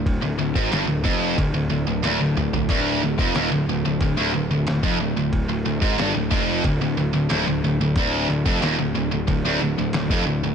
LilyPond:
<<
  \new Staff \with { instrumentName = "Distorted electric guitar" } { \clef bass \time 4/4 \key d \minor \tempo 4 = 91 d,16 d,16 d,16 gis,16 g,16 d,16 f,8 d,16 d,16 d,16 d,16 d,16 d,16 d,16 d,16 | d,8 d,16 f,16 ees,16 d,16 d,16 d,16 d,16 d,16 d,16 d,16 d,16 f,16 d,16 d,16~ | d,16 d,16 d,16 gis,16 g,16 d,16 f,8 d,16 d,16 d,16 d,16 d,16 d,16 d,16 d,16 | d,8 d,16 f,16 ees,16 d,16 d,16 d,16 d,16 d,16 d,16 d,16 d,16 f,16 d,16 d,16 | }
  \new Staff \with { instrumentName = "Picked electric bass" } { \clef bass \time 4/4 \key d \minor d,,16 d,,16 d,,16 gis,,16 g,,16 d,,16 f,,8 d,,16 d,,16 d,,16 d,,16 d,,16 d,,16 d,,16 d,,16 | d,,8 d,,16 f,,16 ees,,16 d,,16 d,,16 d,,16 d,,16 d,,16 d,,16 d,,16 d,,16 f,,16 d,,16 d,,16~ | d,,16 d,,16 d,,16 gis,,16 g,,16 d,,16 f,,8 d,,16 d,,16 d,,16 d,,16 d,,16 d,,16 d,,16 d,,16 | d,,8 d,,16 f,,16 ees,,16 d,,16 d,,16 d,,16 d,,16 d,,16 d,,16 d,,16 d,,16 f,,16 d,,16 d,,16 | }
  \new DrumStaff \with { instrumentName = "Drums" } \drummode { \time 4/4 <bd rb>8. bd16 <rb sn>8 bd8 <bd rb>4 <rb sn>8 toml16 tomfh16 | <bd rb>8. bd16 <rb sn>4 <bd rb>4 <rb sn>16 bd8. | <bd rb>8. bd16 <rb sn>8 bd8 <bd rb>4 <rb sn>4 | <bd rb>8. bd16 <rb sn>4 <bd rb>4 <rb sn>16 bd8. | }
>>